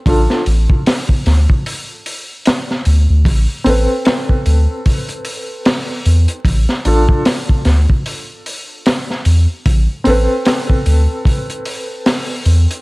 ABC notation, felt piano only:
X:1
M:4/4
L:1/8
Q:"Swing 16ths" 1/4=75
K:Am
V:1 name="Felt piano"
[DFA] z6 z | z [CAB]6- [CAB] | z [DFA] z6 | z [CAB]6- [CAB] |]